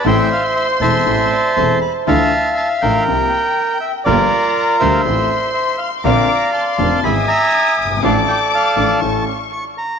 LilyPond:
<<
  \new Staff \with { instrumentName = "Violin section" } { \time 4/4 \key a \minor \tempo 4 = 121 c'''2. a''4 | \key d \minor f''2 g''2 | bes''2 c'''2 | d'''4 c'''4 ees'''2 |
d'''2 cis'''4. r8 | }
  \new Staff \with { instrumentName = "Bandoneon" } { \time 4/4 \key a \minor << { g''8 f''8 e''8 a''4. c'''8 b''8 | \key d \minor a''4 a''8 g''2 e''8 | d''4. e''4. e''8 f''8 | bes''4 a''8 a''8 b''8 bes''4 gis''8 |
f''8 g''8 a''4. r8 cis'''8 bes''8 | } \\ { <c'' e''>4. <c'' e''>2 r8 | <e'' f''>4. bes'2 r8 | <f' bes'>4. c''2 r8 | <d'' f''>2 <e'' gis''>8 e''4. |
<a' d''>4 <d'' f''>4 r2 | } >> }
  \new Staff \with { instrumentName = "Vibraphone" } { \time 4/4 \key a \minor r2 r8 d''8 c''4 | \key d \minor r1 | r1 | r1 |
r1 | }
  \new Staff \with { instrumentName = "String section" } { \time 4/4 \key a \minor <a c' e'>8 r4 <a c' e'>8 <a c' e'>8 r8 <a c' e'>8 r8 | \key d \minor <f d' e'>8 r4 <f d' e'>8 <bes c' f'>8 r4. | <g bes f'>8 r4 <g bes f'>8 <f a e'>8 r4. | <bes c' d'>8 r4 <bes c' d'>8 <gis b e'>8 r4. |
<a d' f'>8 r4 <a d' f'>8 <a cis' e'>8 r4. | }
  \new Staff \with { instrumentName = "Grand piano" } { \clef bass \time 4/4 \key a \minor <a,, a, e a c' a'>8 r4 <e,, e, e a c' a'>8 <a,, a, e a c' a'>8 r8 <e,, e, e a c' a'>8 r8 | \key d \minor <d, d e a d' f'>8 r4 <a,, a, e a d' f'>8 <c, c f bes c' g'>8 r4. | <g,, g, f bes d' g'>8 r4 <d, d f bes d' g'>8 <a,, a, e a c' f'>8 r4. | <bes,, bes, d bes c' f'>8 r4 <f,, f, d bes c' f'>8 <gis,, gis, e gis b gis'>8 r4 r32 fis,,32 g,,32 gis,,32 |
<a,, a, f a d' a'>8 r4 <a,, a, f a d' a'>8 <a,, a, e a cis' a'>8 r4. | }
  \new Staff \with { instrumentName = "Double bass" } { \clef bass \time 4/4 \key a \minor a,,8 r4 e,,8 a,,8 r8 e,,8 r8 | \key d \minor d,8 r4 a,,8 c,8 r4. | g,,8 r4 d,8 a,,8 r4. | bes,,8 r4 f,,8 gis,,8 r4 g,,8 |
a,,8 r4 a,,8 a,,8 r4. | }
>>